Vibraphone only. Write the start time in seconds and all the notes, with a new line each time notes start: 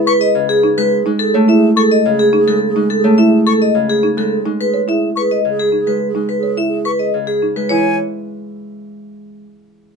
0.07 B4
0.21 D#5
0.49 G#4
0.78 B4
1.19 A4
1.49 E5
1.77 A4
1.92 D#5
2.19 G#4
2.48 A4
2.90 A4
3.18 E5
3.47 A4
3.62 D#5
3.89 G#4
4.18 A4
4.61 B4
4.89 E5
5.17 B4
5.31 D#5
5.60 G#4
5.87 B4
6.29 B4
6.57 E5
6.85 B4
6.99 D#5
7.27 G#4
7.56 B4
7.69 C#5